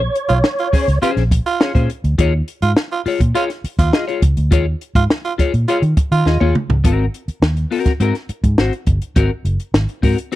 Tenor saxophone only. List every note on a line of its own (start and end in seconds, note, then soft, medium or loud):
0.29 0.38 F4 loud
0.59 0.69 F4 medium
1.02 1.12 F4 loud
1.46 1.88 F4 loud
2.62 2.72 F4 loud
2.92 3.01 F4 medium
3.35 3.44 F4 loud
3.79 4.20 F4 medium
4.96 5.05 F4 loud
5.25 5.34 F4 medium
5.68 5.77 F4 medium
6.12 6.53 F4 loud